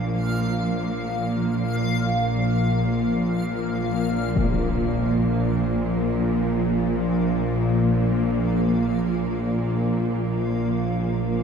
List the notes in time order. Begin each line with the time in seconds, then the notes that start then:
Already playing: A#1 A#2 F3 A#3 F5
4.34 A#1 A#2 F5, impact